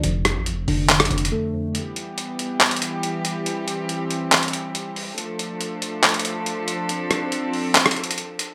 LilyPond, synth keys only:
\new Staff \with { instrumentName = "Synth keys" } { \clef bass \time 4/4 \key f \lydian \tempo 4 = 140 f,8 f,8 f,8 d8 f,8 f,8 a8 f,8 | r1 | r1 | r1 |
r1 | }